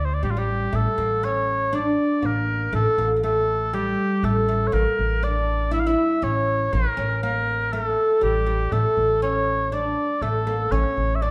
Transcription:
0.00 0.19 D2 medium
0.05 0.15 C5 medium
0.14 0.23 D5 medium
0.23 0.69 A1 medium
0.23 0.35 G3 medium
0.23 0.32 G4 medium
0.31 0.40 F4 medium
0.37 0.72 G3 medium
0.37 0.77 G4 medium
0.72 0.85 A1 medium
0.72 0.96 A3 medium
0.72 1.26 A4 medium
0.98 1.94 A1 medium
0.98 1.24 A#3 medium
1.23 1.70 C#4 medium
1.23 1.76 C#5 medium
1.73 2.24 D4 medium
1.73 2.27 D5 loud
2.22 2.69 A1 medium
2.22 2.69 A#3 medium
2.22 2.74 A#4 medium
2.73 2.84 A1 medium
2.73 2.98 A3 medium
2.73 3.10 A4 loud
2.98 3.94 A1 medium
2.98 3.15 A#3 medium
3.16 3.23 A#3 medium
3.23 3.73 A3 medium
3.23 3.75 A4 medium
3.73 4.24 G3 medium
3.73 4.26 G4 medium
4.23 4.69 A1 medium
4.23 4.47 A3 medium
4.23 4.69 A4 medium
4.48 4.71 A3 medium
4.67 4.75 C#5 medium
4.72 4.84 A1 medium
4.72 5.24 A#3 medium
4.72 5.25 A#4 loud
4.99 5.94 A1 medium
5.23 5.69 D4 medium
5.23 5.72 D5 loud
5.71 5.85 E4 medium
5.71 5.81 E5 loud
5.80 5.89 F5 medium
5.87 6.22 E4 medium
5.87 6.25 E5 loud
6.22 6.68 A1 medium
6.22 6.74 C#4 medium
6.22 6.74 C#5 medium
6.73 6.84 A1 medium
6.73 6.98 A#3 medium
6.73 7.22 A#4 loud
6.97 7.93 A1 medium
6.97 7.23 C#4 medium
7.23 7.72 A#3 medium
7.23 7.73 A#4 medium
7.73 8.21 A3 medium
7.73 7.85 A#4 medium
7.85 8.23 A4 medium
8.21 8.68 A1 medium
8.21 8.45 G3 medium
8.21 8.74 G4 medium
8.46 8.72 G3 medium
8.72 8.83 A1 medium
8.72 9.24 A3 medium
8.72 9.22 A4 medium
8.97 9.93 A1 medium
9.22 9.72 C#4 medium
9.22 9.74 C#5 medium
9.72 10.24 D4 medium
9.72 10.23 D5 medium
10.22 10.68 A1 medium
10.22 10.46 A3 medium
10.22 10.73 A4 medium
10.47 10.73 A#3 medium
10.72 10.83 A1 medium
10.72 11.22 C#4 medium
10.72 11.16 C#5 medium
10.97 11.31 A1 medium
11.15 11.23 E5 medium
11.22 11.31 D4 medium
11.22 11.31 D5 medium

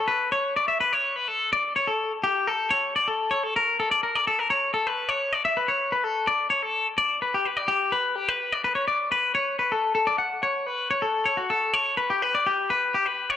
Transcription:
0.08 0.32 B4 medium
0.32 0.56 C#5 medium
0.56 0.68 D5 medium
0.68 0.80 E5 medium
0.81 0.93 B4 medium
0.93 1.16 C#5 medium
1.16 1.28 B4 medium
1.28 1.52 A4 medium
1.53 1.76 D5 medium
1.76 1.88 C#5 medium
1.87 2.12 A4 medium
2.24 2.47 G4 medium
2.47 2.71 A4 medium
2.71 2.95 C#5 medium
2.96 3.08 D5 medium
3.08 3.31 A4 medium
3.31 3.43 C#5 medium
3.43 3.55 A4 medium
3.56 3.79 A#4 medium
3.80 3.91 A4 medium
3.91 4.03 D5 medium
4.03 4.15 A#4 medium
4.15 4.27 D5 medium
4.27 4.39 A4 medium
4.39 4.50 A#4 medium
4.50 4.73 C#5 medium
4.74 4.87 A4 medium
4.87 5.09 B4 medium
5.09 5.33 C#5 medium
5.33 5.45 D5 medium
5.45 5.57 E5 medium
5.57 5.69 B4 medium
5.68 5.92 C#5 medium
5.92 6.04 B4 medium
6.04 6.28 A4 medium
6.27 6.50 D5 medium
6.50 6.63 C#5 medium
6.63 6.87 A4 medium
6.98 7.22 D5 medium
7.22 7.34 B4 medium
7.34 7.46 G4 medium
7.45 7.57 B4 medium
7.57 7.69 D5 medium
7.68 7.93 G4 medium
7.92 8.16 B4 medium
8.16 8.29 G4 medium
8.29 8.52 B4 medium
8.52 8.64 D5 medium
8.64 8.75 B4 medium
8.75 8.87 C#5 medium
8.88 9.11 D5 medium
9.12 9.34 B4 medium
9.35 9.59 C#5 medium
9.59 9.71 B4 medium
9.72 9.94 A4 medium
9.95 10.07 A4 medium
10.07 10.18 D5 medium
10.18 10.42 F#5 medium
10.43 10.66 C#5 medium
10.66 10.90 B4 medium
10.91 11.03 C#5 medium
11.02 11.26 A4 medium
11.25 11.38 C#5 medium
11.37 11.50 F#4 medium
11.50 11.73 A4 medium
11.73 11.97 C#5 medium
11.97 12.10 B4 medium
12.10 12.22 G4 medium
12.22 12.34 B4 medium
12.35 12.46 D5 medium
12.46 12.70 G4 medium
12.70 12.94 B4 medium
12.94 13.06 G4 medium
13.06 13.30 B4 medium
13.30 13.37 C#5 medium

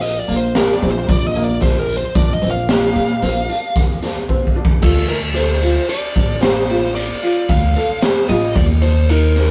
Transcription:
0.00 0.18 A#1 medium
0.00 0.19 D#5 medium
0.00 closed hi-hat medium
0.19 0.36 D5 medium
0.28 0.75 A#1 medium
0.28 0.45 A#3 medium
0.28 closed hi-hat medium
0.37 0.54 C5 medium
0.55 0.72 D4 medium
0.55 0.73 A#4 medium
0.55 snare loud
0.55 closed hi-hat medium
0.73 0.90 D5 loud
0.82 1.05 A#1 loud
0.82 1.16 C4 medium
0.82 closed hi-hat medium
0.91 1.09 C5 medium
1.09 2.02 A#1 loud
1.09 1.27 D5 loud
1.09 kick loud
1.09 closed hi-hat medium
1.27 1.44 D#5 medium
1.35 1.52 A#3 medium
1.35 closed hi-hat medium
1.44 1.62 D5 medium
1.62 1.96 D4 medium
1.62 1.79 C5 medium
1.62 kick medium
1.62 snare soft
1.62 closed hi-hat medium
1.79 1.97 A#4 medium
1.89 closed hi-hat medium
1.97 2.15 C5 medium
2.15 2.39 A#1 medium
2.15 2.32 D4 medium
2.15 2.34 D5 medium
2.15 kick loud
2.15 closed hi-hat medium
2.33 2.50 D#5 medium
2.42 2.88 A#1 medium
2.42 2.59 C4 medium
2.42 closed hi-hat medium
2.51 3.80 F5 medium
2.69 3.03 A#3 medium
2.69 snare loud
2.69 closed hi-hat medium
2.95 3.19 A#2 medium
2.95 closed hi-hat medium
3.22 3.45 A#1 medium
3.22 3.39 C4 medium
3.22 closed hi-hat medium
3.49 3.83 D4 medium
3.49 closed hi-hat medium
3.76 kick loud
3.76 closed hi-hat medium
4.02 4.19 D4 medium
4.02 snare soft
4.02 closed hi-hat medium
4.29 4.46 C4 medium
4.29 kick medium
4.47 kick medium
4.56 4.73 D4 medium
4.65 kick loud
4.82 5.75 D2 loud
4.82 4.99 F4 medium
4.82 5.07 A4 medium
4.82 kick loud
4.82 crash medium
5.09 5.26 D4 medium
5.09 5.16 A#4 medium
5.09 ride medium
5.35 5.52 A4 medium
5.35 5.89 C5 medium
5.35 snare soft
5.35 ride medium
5.62 5.79 F4 medium
5.62 ride medium
5.89 6.06 D4 medium
5.89 6.41 D5 medium
5.89 ride medium
6.16 7.09 A1 medium
6.16 6.33 D4 medium
6.16 kick medium
6.16 ride medium
6.42 6.59 G4 medium
6.42 6.92 C5 medium
6.42 snare loud
6.42 ride medium
6.70 7.03 F4 medium
6.70 ride medium
6.95 7.50 D5 medium
6.95 ride medium
7.23 7.56 F4 medium
7.23 ride medium
7.49 7.72 D2 medium
7.49 8.04 F5 loud
7.49 kick loud
7.49 ride medium
7.76 8.10 A4 medium
7.76 ride medium
8.02 8.27 C5 medium
8.02 snare loud
8.02 ride medium
8.29 8.52 A1 loud
8.29 8.63 F4 medium
8.29 8.54 D#5 medium
8.29 ride medium
8.56 9.48 D#2 loud
8.56 8.63 D5 medium
8.56 kick loud
8.56 ride medium
8.82 8.99 D4 medium
8.82 9.10 C5 medium
8.82 ride medium
9.09 9.43 D#4 medium
9.09 9.51 A#4 medium
9.09 ride medium
9.36 snare soft
9.36 ride medium

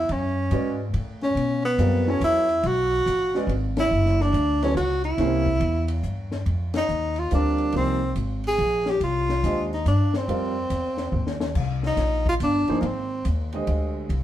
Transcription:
0.00 0.13 E4 medium
0.09 0.50 F#2 medium
0.09 0.81 C#4 medium
0.09 ride medium
0.51 0.93 G#2 medium
0.51 0.76 G#3 medium
0.51 0.77 C#4 medium
0.51 0.77 F#4 medium
0.51 0.77 B4 medium
0.51 0.77 D5 medium
0.51 hi-hat pedal medium
0.51 ride medium
0.94 1.34 A2 medium
0.94 ride medium
1.22 1.62 C#4 medium
1.22 snare soft
1.35 1.77 B2 medium
1.35 ride medium
1.65 2.11 B3 medium
1.78 2.20 F#2 medium
1.78 2.04 G3 medium
1.78 2.04 C4 medium
1.78 2.04 F4 medium
1.78 2.04 A#4 medium
1.78 2.04 D5 medium
1.78 hi-hat pedal medium
1.78 ride medium
2.06 2.43 F#3 medium
2.06 2.44 B3 medium
2.06 2.23 C#4 medium
2.06 2.44 E4 medium
2.06 2.44 A4 medium
2.06 2.45 C#5 medium
2.20 2.62 E2 medium
2.20 2.68 E4 loud
2.20 hi-hat pedal medium
2.20 ride medium
2.49 ride soft
2.63 3.05 B1 medium
2.63 3.50 F#4 loud
2.63 ride medium
3.06 3.46 A1 medium
3.06 hi-hat pedal medium
3.06 ride medium
3.35 3.48 G#3 medium
3.35 3.48 C#4 medium
3.35 3.48 F#4 medium
3.35 3.49 B4 medium
3.35 3.49 D5 medium
3.35 snare soft
3.47 3.89 G#1 medium
3.47 ride medium
3.77 4.23 E4 loud
3.77 snare medium
3.77 ride medium
3.91 4.32 F#1 medium
4.06 snare soft
4.21 4.65 D4 loud
4.21 snare soft
4.33 4.74 D2 loud
4.33 hi-hat pedal medium
4.33 ride medium
4.62 4.75 F#3 medium
4.62 4.75 B3 medium
4.62 4.76 C#4 medium
4.62 4.76 E4 medium
4.62 4.76 A4 medium
4.62 4.76 C#5 medium
4.62 snare soft
4.62 ride soft
4.75 5.17 C#2 medium
4.75 5.02 F#4 medium
4.75 hi-hat pedal medium
4.75 ride medium
5.04 6.00 E4 medium
5.04 ride soft
5.18 5.59 C2 medium
5.18 5.44 A#3 medium
5.18 5.44 C#4 medium
5.18 5.44 E4 medium
5.18 5.45 G4 medium
5.18 5.45 C5 medium
5.18 snare soft
5.18 ride medium
5.46 kick medium
5.60 6.02 E2 medium
5.60 ride medium
5.88 ride medium
6.03 6.45 G2 medium
6.03 hi-hat pedal medium
6.32 snare soft
6.46 6.87 F2 medium
6.46 ride medium
6.74 7.21 D#4 medium
6.74 snare medium
6.74 ride medium
6.89 7.30 D#2 medium
6.89 hi-hat pedal medium
7.16 7.32 F4 medium
7.16 ride soft
7.31 7.72 D2 medium
7.31 7.96 G3 medium
7.31 7.96 C4 medium
7.31 7.72 D4 medium
7.31 7.96 F4 medium
7.31 7.97 A#4 medium
7.31 7.97 D5 medium
7.31 hi-hat pedal medium
7.31 ride medium
7.58 ride soft
7.72 8.14 C2 medium
7.72 7.99 F3 medium
7.72 7.98 A#3 medium
7.72 7.99 D#4 medium
7.72 7.99 G#4 soft
7.72 7.99 C5 medium
7.72 ride medium
7.77 8.15 C4 medium
8.16 8.57 G#1 medium
8.16 hi-hat pedal medium
8.16 ride medium
8.44 8.92 G#4 loud
8.44 ride soft
8.59 9.00 A#1 medium
8.59 ride medium
8.86 snare medium
8.90 9.03 G4 medium
9.00 9.42 C2 medium
9.00 9.68 F4 medium
9.00 ride medium
9.29 snare soft
9.43 9.84 D#2 medium
9.43 9.68 G#3 medium
9.43 9.69 D4 medium
9.43 9.69 G4 medium
9.43 9.69 C5 medium
9.43 9.69 D#5 medium
9.43 hi-hat pedal medium
9.43 ride medium
9.74 9.86 D#4 medium
9.86 10.27 G2 medium
9.86 10.13 D4 medium
9.86 hi-hat pedal medium
9.86 ride medium
10.14 11.38 C4 medium
10.14 snare medium
10.28 10.69 F2 medium
10.28 10.53 G3 medium
10.28 10.53 C4 medium
10.28 10.54 F4 medium
10.28 10.54 A#4 medium
10.28 10.54 D5 medium
10.28 ride medium
10.70 11.11 E2 medium
10.70 hi-hat pedal medium
10.70 ride medium
10.97 snare soft
11.12 11.54 D#2 medium
11.12 floor tom soft
11.27 snare medium
11.40 snare medium
11.55 11.96 C2 medium
11.55 kick medium
11.55 crash medium
11.83 12.25 D#4 loud
11.83 snare soft
11.97 12.38 A#1 medium
11.97 snare soft
11.97 hi-hat pedal medium
11.97 ride medium
12.26 12.35 F4 loud
12.26 kick medium
12.40 12.66 G1 medium
12.40 12.77 D4 medium
12.40 hi-hat pedal medium
12.40 ride medium
12.68 12.82 F3 medium
12.68 12.82 A#3 medium
12.68 12.82 D#4 medium
12.68 12.82 G#4 medium
12.68 12.82 C5 medium
12.68 muted upright bass stroke soft
12.68 ride soft
12.81 13.23 G#1 medium
12.81 12.88 A#3 medium
12.81 ride medium
12.86 13.27 C4 medium
13.25 13.66 D#2 medium
13.25 hi-hat pedal medium
13.25 ride medium
13.52 14.08 D3 medium
13.52 14.07 G#3 medium
13.52 14.08 G4 medium
13.52 14.08 C5 medium
13.52 14.08 D#5 medium
13.52 ride soft
13.67 14.08 D2 medium
13.67 ride medium
14.09 14.23 C2 medium
14.09 ride medium

